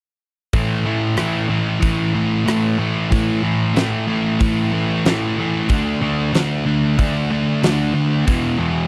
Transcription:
0.53 distorted electric guitar A2 E3 A3, kick, open hi-hat
0.85 distorted electric guitar A2 E3 A3
1.17 distorted electric guitar A2 E3 A3, cross-stick, open hi-hat
1.49 distorted electric guitar A2 E3 A3
1.80 distorted electric guitar A2 E3 A3, kick, open hi-hat
2.14 distorted electric guitar A2 E3 A3
2.45 distorted electric guitar A2 E3 A3, cross-stick, open hi-hat
2.78 distorted electric guitar A2 E3 A3
3.10 distorted electric guitar A2 E3 A3, kick, open hi-hat
3.42 distorted electric guitar A2 E3 A3
3.74 distorted electric guitar A2 E3 A3, snare, open hi-hat
4.07 distorted electric guitar A2 E3 A3
4.40 distorted electric guitar A2 E3 A3, kick, open hi-hat
4.73 distorted electric guitar A2 E3 A3
5.06 distorted electric guitar A2 E3 A3, snare, open hi-hat
5.38 distorted electric guitar A2 E3 A3
5.69 distorted electric guitar D3 A3 D4, kick, open hi-hat
6.01 distorted electric guitar D3 A3 D4
6.33 distorted electric guitar D3 A3 D4, snare, open hi-hat
6.65 distorted electric guitar D3 A3 D4
6.98 distorted electric guitar D3 A3 D4, kick, open hi-hat
7.31 distorted electric guitar D3 A3 D4
7.62 distorted electric guitar D3 A3 D4, snare, open hi-hat
7.94 distorted electric guitar D3 A3 D4
8.26 distorted electric guitar E2 B2 E3, kick, open hi-hat
8.58 distorted electric guitar E2 B2 E3

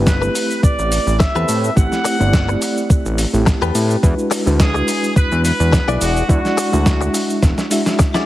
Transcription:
Already playing: analog synth bass G1, reed electric piano A3 C4 E4 G4 B4
0.07 trumpet section B4, kick, snare, cabasa
0.22 muted clean electric guitar stroke, cabasa
0.35 muted clean electric guitar stroke, open hi-hat, cabasa
0.51 cabasa
0.63 analog synth bass A1, trumpet section D5, kick, cabasa
0.79 analog synth bass A1, cabasa
0.92 open hi-hat, cabasa
1.07 analog synth bass A1, cabasa
1.19 trumpet section E5, muted clean electric guitar stroke, kick, snare, cabasa
1.35 analog synth bass E2, clean electric guitar C4 G4 A4 B4, cabasa
1.48 analog synth bass A2, open hi-hat, cabasa
1.64 cabasa
1.76 analog synth bass A1, reed electric piano A3 C4 E4 G4, trumpet section F#5, kick, cabasa
1.92 snare, cabasa
2.05 muted clean electric guitar stroke, open hi-hat, cabasa
2.19 analog synth bass G1, reed electric piano A3 C4 E4 G4 D5, muted clean electric guitar stroke, cabasa
2.33 kick, snare, cabasa
2.49 muted clean electric guitar stroke, cabasa
2.61 muted clean electric guitar stroke, open hi-hat, cabasa
2.77 cabasa
2.90 kick, cabasa
3.05 analog synth bass A1, cabasa
3.18 open hi-hat, cabasa
3.33 analog synth bass A1, reed electric piano A3 C4 E4 G4, cabasa
3.46 muted clean electric guitar stroke, kick, snare, cabasa
3.62 analog synth bass E2, clean electric guitar C4 G4 A4 B4, cabasa
3.75 analog synth bass A2, open hi-hat, cabasa
3.90 cabasa
4.03 analog synth bass E2, reed electric piano G#3 D4 E4 F#4 B4, kick, cabasa
4.19 cabasa
4.31 muted clean electric guitar stroke, open hi-hat, cabasa
4.46 analog synth bass D2, reed electric piano G#3 D4 E4 F#4 B4, muted clean electric guitar stroke, cabasa
4.60 trumpet section G#4, kick, snare, cabasa
4.74 muted clean electric guitar stroke, cabasa
4.88 muted clean electric guitar stroke, open hi-hat, cabasa
5.04 cabasa
5.16 analog synth bass E2, trumpet section B4, kick, cabasa
5.32 analog synth bass E2, cabasa
5.45 trumpet section B4, open hi-hat, cabasa
5.60 analog synth bass E2, cabasa
5.72 muted clean electric guitar stroke, kick, snare, cabasa
5.88 analog synth bass B1, clean electric guitar E4 F#4 G#4 D5, cabasa
6.01 analog synth bass E1, trumpet section F#4, open hi-hat, cabasa
6.17 cabasa
6.29 analog synth bass E2, reed electric piano G#3 D4 E4 F#4 D5, trumpet section F#4, kick, cabasa
6.45 snare, cabasa
6.57 muted clean electric guitar stroke, open hi-hat, cabasa
6.72 analog synth bass D2, reed electric piano G#3 D4 E4 F#4 E5, muted clean electric guitar stroke, cabasa
6.86 kick, snare, cabasa
7.01 muted clean electric guitar stroke, cabasa
7.14 muted clean electric guitar stroke, open hi-hat, cabasa
7.30 cabasa
7.43 analog synth bass E1, kick, snare, cabasa
7.58 snare, cabasa
7.70 reed electric piano G#3 D4 E4 F#4 E5, open hi-hat, cabasa
7.86 snare, cabasa
7.99 muted clean electric guitar stroke, kick, snare, cabasa
8.14 clean electric guitar E4 F#4 G#4 D5, snare, cabasa

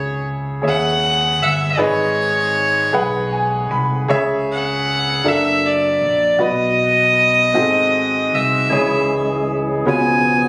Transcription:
Already playing: fingered electric bass C#2, upright piano C#3 G#4 C#5 E5, fiddle C#5
0.62 fingered electric bass D#2, upright piano G#4 C#5 E5
0.68 fiddle F#5
1.40 fingered electric bass G1, fiddle E5
1.77 fingered electric bass G#1, upright piano G#2 G#4 B4 D#5, fiddle C#5
2.93 fingered electric bass B1, upright piano G#4 B4 F#5
3.33 upright piano G#5
3.71 fingered electric bass C2, upright piano B5
4.08 fingered electric bass C#2, upright piano C#3 G#4 C#5 E5
4.51 fiddle F#5
5.24 fingered electric bass F#1, upright piano D4 F#4 A4 A#4 E5, fiddle E5
5.66 fiddle D5
6.01 fingered electric bass A#1
6.39 fingered electric bass B1, upright piano B2 F#4 B4 D#5, fiddle D#5
7.54 fingered electric bass G#1, upright piano G#2 C4 F#4 G#4 A4 D#5
8.33 fingered electric bass C2, fiddle E5
8.70 fingered electric bass C#2, upright piano C#3 D#4 G#4 C#5, tonewheel organ E3 G#3 C#4 G#4
8.77 upright piano E4
9.86 fingered electric bass C#2, upright piano B2 B3 C#4 F4 G#4 C#5, tonewheel organ F3 B3 G#4, fiddle G#5

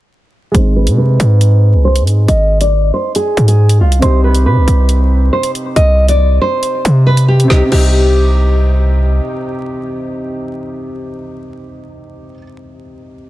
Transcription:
0.52 808-style bass G#1, grand piano G#3 G#4, nylon-string guitar C5, closed hi-hat
0.56 grand piano C4 D#4
0.76 nylon-string guitar B4
0.87 808-style bass C3, closed hi-hat
0.98 nylon-string guitar B4
1.20 808-style bass G#2, closed hi-hat
1.41 closed hi-hat
1.74 808-style bass C2
1.85 nylon-string guitar C5
1.96 closed hi-hat
2.01 808-style bass G#2
2.07 closed hi-hat
2.28 808-style bass G#1, nylon-string guitar D#5, closed hi-hat
2.61 nylon-string guitar D5, closed hi-hat
2.94 nylon-string guitar C5
3.15 nylon-string guitar G#4, closed hi-hat
3.37 808-style bass G#2, closed hi-hat
3.48 nylon-string guitar G#4, closed hi-hat
3.69 closed hi-hat
3.81 808-style bass C2, nylon-string guitar F4
3.92 closed hi-hat
3.99 808-style bass C2, grand piano C3 C4, nylon-string guitar C5, closed hi-hat
4.03 grand piano D#4 G4
4.24 nylon-string guitar B4
4.35 closed hi-hat
4.46 808-style bass C3, nylon-string guitar B4
4.57 808-style bass C2
4.67 808-style bass C2, closed hi-hat
4.89 closed hi-hat
5.33 nylon-string guitar C5
5.43 closed hi-hat
5.55 closed hi-hat
5.76 808-style bass C2, nylon-string guitar D#5, closed hi-hat
6.08 nylon-string guitar D5, closed hi-hat
6.41 nylon-string guitar C5
6.63 closed hi-hat
6.85 808-style bass C3, closed hi-hat
7.07 nylon-string guitar B4
7.17 closed hi-hat
7.28 nylon-string guitar G4
7.40 closed hi-hat
7.44 grand piano C3
7.48 808-style bass C2, grand piano C4, nylon-string guitar G4, snare
7.52 grand piano D#4
7.57 grand piano G4
7.66 grand piano C3
7.70 808-style bass C2, grand piano C4, nylon-string guitar G4, crash
7.74 grand piano D#4
7.78 grand piano G4

